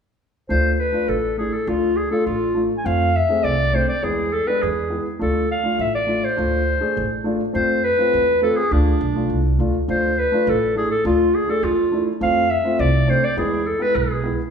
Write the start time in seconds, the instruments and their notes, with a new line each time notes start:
0.49 upright bass D2, upright piano A3 D4 F4, clarinet C5
0.73 clarinet C5
0.80 clarinet B4
0.92 upright piano A3 D4 F4
1.08 upright bass A1, clarinet A4
1.37 upright piano A3 D4 E4, clarinet G#4
1.54 clarinet A4
1.67 upright bass D2, upright piano A3 D4 F4, clarinet F4
1.97 clarinet G#4
2.11 upright piano A3 D4 F4, clarinet A4
2.27 upright bass A1, clarinet F4
2.54 upright piano A3 D4 F4
2.78 clarinet G#5
2.84 upright bass F2, upright piano A3 C4 F4, clarinet F5
3.16 clarinet E5
3.29 upright piano A3 C4 G#4
3.44 upright bass C2, clarinet D5
3.73 upright piano A3 C4 D4, clarinet C5
3.89 clarinet D5
4.03 upright bass E2, upright piano G#3 B3 E4, clarinet G#4
4.33 clarinet A4
4.47 upright piano G#3 B3 D4, clarinet B4
4.62 upright bass E2, clarinet G#4
4.90 upright piano G#3 B3 E4
5.19 upright bass D2, upright piano A3 D4 F4, clarinet A4
5.51 clarinet F5
5.63 upright piano A3 D4 F4
5.79 upright bass A1, clarinet E5
5.95 clarinet D5
6.07 upright piano A3 D4 F4
6.25 clarinet C5
6.37 upright bass D2, upright piano A3 D4 F4
6.80 upright piano A3 D4 G#4
6.97 upright bass A1
7.24 upright piano A3 D4 F4
7.53 upright bass F2, upright piano A3 C4 F4, clarinet C5
7.84 clarinet B4
7.98 upright piano A3 C4 F4
8.14 upright bass E2
8.41 upright piano A3 C4 F4, clarinet A4
8.57 clarinet G#4
8.71 upright bass D2, upright piano A3 D4 F4, clarinet D4
9.01 upright bass B1
9.15 upright piano A3 D4 F4
9.30 upright bass C2
9.58 upright bass D2, upright piano A3 D4 F4
9.88 upright bass D2, upright piano A3 D4 F4, clarinet C5
10.19 clarinet B4
10.32 upright piano A3 D4 F4
10.47 upright bass A1, clarinet A4
10.76 upright piano A3 D4 E4, clarinet G#4
10.91 clarinet A4
11.05 upright bass D2, upright piano A3 D4 F4, clarinet F4
11.35 clarinet G#4
11.48 upright piano A3 D4 G#4, clarinet A4
11.63 upright bass E2, clarinet F4
11.92 upright piano A3 D4 E4
12.20 upright bass F2, upright piano A3 C4 F4, clarinet F5
12.50 clarinet E5
12.64 upright piano A3 C4 F4
12.79 upright bass C2, clarinet D5
13.07 upright piano A3 C4 D4, clarinet C5
13.24 clarinet D5
13.37 upright bass E2, upright piano G#3 B3 E4, clarinet G#4
13.67 clarinet A4
13.79 upright piano G#3 B3 E4, clarinet B4
13.95 upright bass B1, clarinet G#4
14.23 upright piano G#3 B3 E4